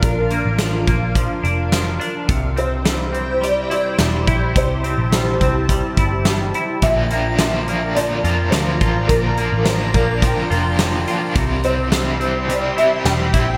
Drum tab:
HH |xxxxxxxx|xxxxxxxx|xxxxxxxx|xxxxxxxx|
SD |--o---o-|--o---o-|--o---o-|--o---o-|
BD |o--oo---|o------o|o--ooo--|o------o|

HH |xxxxxxxx|xxxxxxxx|
SD |--o---o-|--o---o-|
BD |o--oo---|o------o|